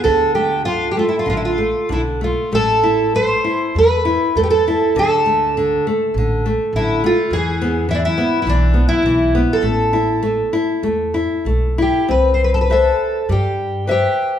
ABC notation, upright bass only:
X:1
M:4/4
L:1/8
Q:1/4=100
K:Ddor
V:1 name="Upright bass" clef=bass
D,,4 A,,,2 B,,,2 | A,,,4 E,,2 E,,2 | D,,4 A,,,2 A,,,2 | E,,4 B,,,2 B,,,2 |
A,,,4 E,,2 B,,,2 | [K:C] C,,4 G,,4 |]